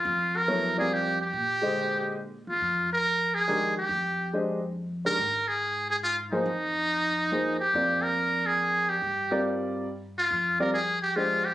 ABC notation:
X:1
M:3/4
L:1/8
Q:"Swing" 1/4=141
K:Fdor
V:1 name="Muted trumpet"
F B2 A G G- | G4 z F- | F B2 A2 G- | G2 z3 B- |
B A2 A F E- | E4- E G- | G B2 A2 G- | G2 z3 F- |
F B A G F G |]
V:2 name="Grand piano"
z2 [_G,=B,=E=A_d] [=G,CF_B=d]2 z | z [D,A,Gce]3 z2 | z4 [E,A,DGB] z | z2 [A,DGce] z2 [E,A,DGB] |
z4 z [F,B,EAc] | z4 [F,B,EAc] z | [B,CFBd]4- [B,CFBd] z | z [G,CFBd]3 z2 |
z [G,CFBd] z2 [A,DGce] z |]
V:3 name="Upright bass" clef=bass
F,,6 | B,,4- B,, =E,, | F,,6 | F,,6 |
A,,6 | F,,6 | F,,6 | G,,6 |
F,,6 |]